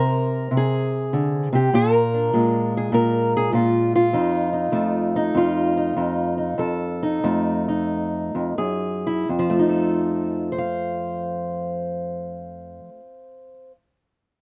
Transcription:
0.00 0.50 C3 medium
0.00 0.55 A#4 loud
0.00 1.71 C5 soft
0.51 1.51 C3 medium
0.57 1.55 G#4 loud
1.13 1.52 D3 medium
1.53 1.73 C3 medium
1.53 1.74 G4 medium
1.73 2.32 A#2 medium
1.73 2.74 A#4 loud
2.14 4.12 D4 soft
2.34 2.91 A#2 medium
2.34 4.14 G#3 soft
2.77 2.94 G#4 medium
2.92 3.51 A#2 medium
2.92 3.34 A#4 loud
3.37 3.54 G#4 loud
3.53 4.13 A#2 medium
3.53 3.94 F4 medium
3.96 5.36 F4 medium
4.13 4.72 F2 medium
4.13 4.53 D#4 medium
4.53 5.14 D#4 soft
4.72 5.33 F2 medium
4.72 6.56 A3 soft
5.16 5.76 D#4 medium
5.35 5.96 F2 medium
5.35 6.59 F4 medium
5.77 5.96 D#4 soft
5.96 6.57 F2 medium
5.96 6.37 D#4 soft
6.38 6.57 D#4 soft
6.58 7.22 F2 medium
6.58 8.56 A4 medium
7.03 7.67 D#4 medium
7.24 8.34 F2 medium
7.24 8.56 A3 medium
7.68 8.56 D#4 medium
8.35 8.57 F2 medium
8.58 9.27 F#2 medium
8.58 9.27 G#4 medium
9.07 9.27 E4 medium
9.29 12.79 F2 medium
9.39 12.89 F3 medium
9.50 13.00 A3 medium
9.59 10.52 D#4 medium
9.69 10.58 A4 medium
10.52 13.71 C5 medium
10.58 13.74 F5 medium

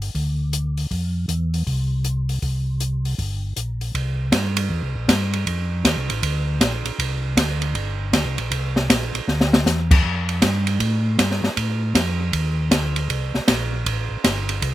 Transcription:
0.00 0.10 G1 medium
0.00 open hi-hat soft
0.14 0.86 D2 medium
0.14 kick soft
0.14 open hi-hat soft
0.53 closed hi-hat medium
0.77 open hi-hat soft
0.91 1.26 F2 medium
0.91 kick soft
0.91 open hi-hat soft
1.28 1.63 E2 medium
1.28 closed hi-hat medium
1.54 open hi-hat soft
1.67 2.39 C2 medium
1.67 kick soft
1.67 open hi-hat soft
2.04 closed hi-hat soft
2.29 open hi-hat soft
2.42 3.15 C2 medium
2.42 kick soft
2.42 open hi-hat soft
2.80 closed hi-hat soft
3.05 open hi-hat soft
3.18 3.54 G1 medium
3.18 kick soft
3.18 open hi-hat soft
3.56 3.92 A#1 medium
3.56 closed hi-hat medium
3.81 open hi-hat soft
3.94 4.31 C2 medium
3.94 kick soft
3.94 ride soft
4.32 4.69 G2 medium
4.32 kick soft
4.32 snare medium
4.32 hi-hat pedal medium
4.32 ride medium
4.57 ride medium
4.70 4.82 E2 medium
4.70 kick soft
4.83 4.96 C2 soft
4.95 5.07 A#1 medium
5.08 5.45 G2 medium
5.08 kick soft
5.08 snare medium
5.08 hi-hat pedal medium
5.08 ride medium
5.33 ride soft
5.46 5.83 F2 medium
5.46 kick soft
5.46 ride medium
5.84 5.97 D#2 medium
5.84 kick soft
5.84 snare medium
5.84 hi-hat pedal medium
5.84 ride medium
5.96 6.10 C2 medium
6.10 6.22 A1 medium
6.10 ride soft
6.22 6.60 D2 medium
6.22 kick soft
6.22 ride medium
6.61 6.84 A#1 medium
6.61 kick soft
6.61 snare medium
6.61 hi-hat pedal medium
6.61 ride medium
6.85 6.92 A#1 soft
6.85 ride soft
6.98 7.36 C2 medium
6.98 kick soft
6.98 ride medium
7.37 7.74 D2 medium
7.37 kick soft
7.37 snare medium
7.37 hi-hat pedal medium
7.37 ride medium
7.62 ride soft
7.75 8.12 G1 medium
7.75 kick soft
7.75 ride soft
8.13 8.26 D2 medium
8.13 kick soft
8.13 snare medium
8.13 hi-hat pedal medium
8.13 ride medium
8.25 8.38 C2 soft
8.38 8.50 A#1 medium
8.38 ride soft
8.51 8.88 C2 medium
8.51 kick soft
8.51 ride medium
8.76 snare medium
8.89 9.12 A#1 medium
8.89 kick soft
8.89 snare medium
8.89 hi-hat pedal medium
8.89 ride medium
9.14 9.21 A#1 soft
9.14 ride soft
9.28 9.65 D2 medium
9.28 snare soft
9.41 snare medium
9.53 snare medium
9.65 10.03 E2 medium
9.65 snare medium
9.65 hi-hat pedal medium
9.91 kick medium
9.91 crash medium
10.04 10.41 F2 medium
10.04 kick soft
10.29 ride soft
10.42 10.79 G2 medium
10.42 kick soft
10.42 snare medium
10.42 hi-hat pedal medium
10.42 ride medium
10.67 ride soft
10.80 11.17 A2 medium
10.80 kick soft
10.80 ride medium
11.18 11.41 G2 medium
11.18 kick soft
11.18 snare medium
11.18 hi-hat pedal medium
11.18 ride medium
11.31 snare soft
11.43 11.49 G2 soft
11.43 snare soft
11.57 11.94 A2 medium
11.57 kick soft
11.57 ride medium
11.95 12.32 F2 medium
11.95 kick soft
11.95 snare medium
11.95 hi-hat pedal medium
11.95 ride medium
12.33 12.70 D#2 medium
12.33 kick soft
12.33 ride medium
12.71 13.08 D2 medium
12.71 kick soft
12.71 snare medium
12.71 hi-hat pedal medium
12.71 ride medium
12.96 ride soft
13.09 13.32 C2 medium
13.09 kick soft
13.09 ride medium
13.34 13.41 C2 soft
13.34 snare soft
13.48 13.84 A#1 medium
13.48 kick soft
13.48 snare medium
13.48 hi-hat pedal medium
13.48 ride medium
13.86 14.09 A1 medium
13.86 kick soft
13.86 ride medium
14.10 14.17 A1 soft
14.24 14.61 G1 medium
14.24 kick soft
14.24 snare medium
14.24 hi-hat pedal medium
14.24 ride medium
14.49 ride soft
14.62 14.74 C2 medium
14.62 kick soft
14.62 ride medium

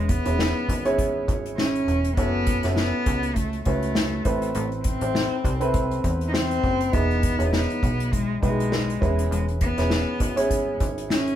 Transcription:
0.00 0.22 E1 loud
0.00 0.34 E3 medium
0.00 0.10 G#3 medium
0.00 0.25 C#4 medium
0.00 0.25 E4 soft
0.00 0.26 G#4 medium
0.00 0.26 B4 medium
0.09 1.28 B3 medium
0.09 kick medium
0.09 closed hi-hat medium
0.25 0.54 E1 medium
0.25 0.70 C#4 soft
0.25 0.70 E4 soft
0.25 0.71 G#4 soft
0.25 0.71 B4 medium
0.25 closed hi-hat soft
0.39 snare medium
0.69 1.24 G#1 medium
0.69 kick medium
0.69 closed hi-hat medium
0.85 1.77 C#4 medium
0.85 1.78 E4 medium
0.85 1.78 G#4 medium
0.85 1.78 C#5 medium
0.85 closed hi-hat soft
0.98 kick medium
0.98 closed hi-hat medium
1.28 1.84 G#1 medium
1.28 kick medium
1.28 closed hi-hat medium
1.46 closed hi-hat soft
1.58 2.13 C#4 medium
1.58 snare medium
1.75 closed hi-hat soft
1.87 2.15 E1 medium
1.87 closed hi-hat soft
2.04 closed hi-hat soft
2.16 2.61 F#1 medium
2.16 2.72 B3 medium
2.16 2.53 C#4 medium
2.16 2.53 E4 soft
2.16 2.53 F#4 medium
2.16 2.53 A4 medium
2.16 kick medium
2.16 closed hi-hat medium
2.47 kick medium
2.47 closed hi-hat medium
2.63 2.92 F#1 medium
2.63 3.44 C#4 medium
2.63 3.44 E4 medium
2.63 3.44 F#4 soft
2.63 3.44 A4 medium
2.63 snare soft
2.63 closed hi-hat medium
2.76 3.36 B3 medium
2.76 snare medium
3.06 3.62 C#2 medium
3.06 kick medium
3.06 closed hi-hat medium
3.23 closed hi-hat soft
3.35 3.64 A3 medium
3.35 kick medium
3.35 closed hi-hat medium
3.53 closed hi-hat soft
3.65 4.22 C#2 medium
3.65 4.51 A3 medium
3.65 4.25 C#4 medium
3.65 4.24 E4 medium
3.65 4.26 F#4 medium
3.65 4.25 B4 medium
3.65 kick medium
3.65 closed hi-hat medium
3.83 closed hi-hat soft
3.95 snare loud
4.25 4.53 A1 medium
4.25 5.11 A2 soft
4.25 4.85 C4 medium
4.25 4.85 E4 medium
4.25 4.85 A4 medium
4.25 4.85 B4 medium
4.25 kick medium
4.25 closed hi-hat soft
4.42 closed hi-hat soft
4.54 4.99 A1 loud
4.54 4.68 A3 medium
4.54 closed hi-hat medium
4.72 closed hi-hat soft
4.84 6.00 C4 medium
4.84 kick medium
4.84 closed hi-hat medium
5.01 5.29 A1 medium
5.01 5.47 C4 medium
5.01 5.47 E4 soft
5.01 5.47 A4 soft
5.01 5.47 C5 medium
5.01 closed hi-hat medium
5.15 snare medium
5.44 6.00 C2 loud
5.44 kick medium
5.44 closed hi-hat medium
5.60 6.53 C4 medium
5.60 6.53 E4 medium
5.60 6.54 A4 medium
5.60 6.54 B4 medium
5.60 closed hi-hat soft
5.74 kick medium
5.74 closed hi-hat medium
5.91 closed hi-hat soft
6.04 6.60 E2 medium
6.04 kick medium
6.04 closed hi-hat medium
6.21 closed hi-hat soft
6.28 6.36 D#4 medium
6.34 6.95 C4 medium
6.34 snare medium
6.51 closed hi-hat soft
6.64 6.91 F#1 medium
6.64 kick medium
6.64 closed hi-hat soft
6.81 closed hi-hat soft
6.92 7.37 E1 medium
6.92 7.78 E3 soft
6.92 7.53 B3 medium
6.92 7.28 D#4 medium
6.92 7.28 E4 medium
6.92 7.29 G#4 soft
6.92 7.29 B4 medium
6.92 kick medium
6.92 closed hi-hat medium
7.11 closed hi-hat soft
7.23 kick medium
7.23 closed hi-hat medium
7.38 7.67 E1 medium
7.38 8.19 D#4 soft
7.38 8.19 E4 soft
7.38 8.20 G#4 soft
7.38 8.20 C#5 medium
7.38 closed hi-hat soft
7.53 8.15 B3 medium
7.53 snare medium
7.70 closed hi-hat soft
7.83 8.38 B1 medium
7.83 kick medium
7.83 closed hi-hat medium
8.00 closed hi-hat soft
8.13 8.42 G#3 medium
8.13 kick medium
8.13 closed hi-hat medium
8.42 8.98 B1 medium
8.42 9.28 G#3 medium
8.42 9.01 D#4 medium
8.42 9.00 E4 medium
8.42 8.50 G4 soft
8.42 9.00 B4 medium
8.42 kick medium
8.42 closed hi-hat medium
8.49 9.00 G#4 soft
8.60 closed hi-hat soft
8.72 snare loud
8.90 closed hi-hat soft
9.01 9.30 E1 medium
9.01 9.87 E3 soft
9.01 9.61 C#4 medium
9.01 9.61 E4 medium
9.01 9.61 G#4 medium
9.01 9.61 B4 medium
9.01 kick medium
9.01 closed hi-hat soft
9.19 closed hi-hat soft
9.31 9.74 E1 loud
9.31 9.45 G#3 medium
9.31 closed hi-hat medium
9.49 closed hi-hat soft
9.61 10.76 B3 medium
9.61 kick medium
9.61 closed hi-hat medium
9.77 10.06 E1 medium
9.77 10.22 C#4 medium
9.77 10.23 E4 medium
9.77 10.23 G#4 soft
9.77 10.23 B4 medium
9.77 snare soft
9.77 closed hi-hat soft
9.90 snare medium
10.20 10.76 G#1 medium
10.20 kick medium
10.20 closed hi-hat medium
10.36 11.29 C#4 medium
10.36 11.29 E4 medium
10.36 11.30 G#4 medium
10.36 11.30 C#5 medium
10.36 closed hi-hat medium
10.51 kick medium
10.51 closed hi-hat medium
10.80 11.36 G#1 medium
10.80 kick medium
10.80 closed hi-hat medium
10.98 closed hi-hat soft
11.10 11.36 C#4 medium
11.10 snare loud
11.27 closed hi-hat soft

